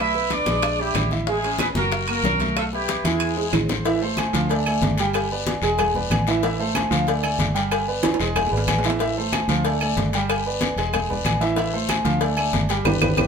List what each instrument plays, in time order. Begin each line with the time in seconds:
Already playing: fingered electric bass B1
0.00 horn section E4 B4 E5
0.14 upright piano B3 B4, high bongo, high conga
0.30 horn section D4 B4 D5, high bongo, high conga, high timbale, short guiro
0.46 fingered electric bass A#1, upright piano G#3 G#4, high bongo, high conga, high timbale, short guiro
0.62 high bongo, high conga, high timbale, long guiro, claves
0.79 horn section G3 E4 G4, upright piano D4 D5, high conga
0.94 fingered electric bass A1, high bongo, low bongo, high conga, high timbale, low timbale, short guiro, claves
1.11 upright piano E4 E5, high bongo, high conga, short guiro
1.27 horn section G#3 E4 G#4, upright piano G#3 G#4, high bongo, high conga, long guiro
1.43 upright piano C#4 C#5, high bongo, high conga, high timbale
1.59 horn section B3 G#4 B4, high bongo, high conga, high timbale, short guiro, claves
1.75 fingered electric bass F#1, upright piano F#3 F#4, horn section A#3 F#4 A#4, high bongo, high conga, short guiro
1.91 high bongo, high conga, high timbale, long guiro
2.08 upright piano A#3 A#4, horn section A#3 F#4 A#4, high conga, high timbale, claves
2.23 fingered electric bass B1, upright piano C#4 C#5, high bongo, low bongo, high conga, short guiro
2.40 upright piano A3 A4, high bongo, high conga, high timbale, short guiro
2.56 horn section A3 F4 A4, high bongo, high conga, high timbale, long guiro, claves
2.72 horn section G3 E4 G4, upright piano B3 B4, high bongo, high conga
2.88 high bongo, high conga, high timbale, short guiro
3.04 fingered electric bass E2, upright piano E3 E4, horn section G#3 E4 G#4, high conga, high timbale, short guiro
3.20 high conga, high timbale, long guiro, claves
3.37 upright piano G#3 G#4, high conga, high timbale
3.52 fingered electric bass A1, low bongo, high conga, high timbale, short guiro, claves
3.69 upright piano C4 C5, low bongo, high conga, low timbale, short guiro
3.85 upright piano E3 E4 E5, cowbell, high conga, low agogo, long guiro
4.01 upright piano A3 A4 C5, high conga
4.17 cowbell, high conga, low agogo, short guiro, claves
4.33 fingered electric bass D2, upright piano F3 F4 F5, cowbell, high conga, short guiro
4.49 upright piano A3 A4 D5, cowbell, high conga, low agogo, long guiro
4.66 upright piano A3 A4 D5, high conga, low agogo, claves
4.81 fingered electric bass G1, cowbell, high conga, low timbale, short guiro
4.98 upright piano G3 G4 G5, cowbell, high conga, low agogo, short guiro
5.13 cowbell, high conga, low agogo, long guiro, claves
5.31 upright piano B3 B4 D5, high conga
5.46 cowbell, high conga, low agogo, short guiro
5.62 fingered electric bass E1, upright piano G#3 G#4 G#5, low agogo, short guiro
5.78 cowbell, high conga, low conga, low agogo, long guiro, claves
5.95 upright piano B3 B4 D5, high conga, low conga
6.10 fingered electric bass A1, cowbell, high conga, low agogo, short guiro, claves
6.27 upright piano E3 E4 E5, cowbell, high conga, short guiro
6.43 upright piano E3 E4 E5, cowbell, high conga, low agogo, long guiro
6.59 upright piano A3 A4 C5, high conga
6.75 cowbell, high conga, low agogo, short guiro, claves
6.91 fingered electric bass D2, upright piano F3 F4 F5, cowbell, high conga, short guiro
7.07 upright piano A3 A4 D5, cowbell, high conga, low agogo, long guiro
7.23 upright piano A3 A4 D5, high conga, low agogo, claves
7.38 fingered electric bass G1, cowbell, high conga, low timbale, short guiro
7.54 upright piano G3 G4 G5, cowbell, high conga, low agogo, short guiro
7.71 cowbell, high conga, low agogo, long guiro, claves
7.87 upright piano B3 B4 D5, high conga
8.03 cowbell, high conga, high timbale, low agogo, short guiro
8.14 high timbale
8.20 fingered electric bass E1, upright piano G#3 G#4 G#5, low agogo, short guiro
8.36 cowbell, high conga, low conga, low agogo, long guiro, claves
8.46 low timbale
8.51 fingered electric bass G#1, upright piano B3 B4 D5, high conga
8.57 low timbale
8.67 fingered electric bass A1, cowbell, high conga, low timbale, low agogo, short guiro, claves
8.78 low timbale
8.83 upright piano E3 E4 E5, cowbell, high conga, short guiro
8.90 low timbale
8.99 upright piano E3 E4 E5, cowbell, high conga, low agogo, long guiro
9.17 upright piano A3 A4 C5, high conga
9.32 cowbell, high conga, low agogo, short guiro, claves
9.48 fingered electric bass D2, upright piano F3 F4 F5, cowbell, high conga, short guiro
9.65 upright piano A3 A4 D5, cowbell, high conga, low agogo, long guiro
9.81 upright piano A3 A4 D5, high conga, low agogo, claves
9.96 fingered electric bass G1, cowbell, high conga, low timbale, short guiro
10.13 upright piano G3 G4 G5, cowbell, high conga, low agogo, short guiro
10.29 cowbell, high conga, low agogo, long guiro, claves
10.45 upright piano B3 B4 D5, high conga
10.61 cowbell, high conga, low agogo, short guiro
10.76 fingered electric bass E1, upright piano G#3 G#4 G#5, low agogo, short guiro
10.93 cowbell, high conga, low conga, low agogo, long guiro, claves
11.10 upright piano B3 B4 D5, high conga, low conga
11.25 fingered electric bass A1, cowbell, high conga, low agogo, short guiro, claves
11.41 upright piano E3 E4 E5, cowbell, high conga, short guiro
11.56 upright piano E3 E4 E5, cowbell, high conga, low agogo, long guiro
11.73 upright piano A3 A4 C5, high conga
11.89 cowbell, high conga, low agogo, short guiro, claves
12.04 fingered electric bass D2, upright piano F3 F4 F5, cowbell, high conga, short guiro
12.21 upright piano A3 A4 D5, cowbell, high conga, low agogo, long guiro
12.37 upright piano A3 A4 D5, high conga, low agogo, claves
12.53 fingered electric bass G1, cowbell, high conga, short guiro
12.69 upright piano G3 G4 G5, cowbell, low agogo, short guiro
12.85 fingered electric bass G1, upright piano D4 G4 B4, cowbell, high conga, high timbale, long guiro, claves
13.01 fingered electric bass G1, upright piano D4 G4 B4, cowbell, high conga, high timbale, long guiro, claves
13.17 fingered electric bass G1, upright piano D4 G4 B4, cowbell, high conga, high timbale, long guiro, claves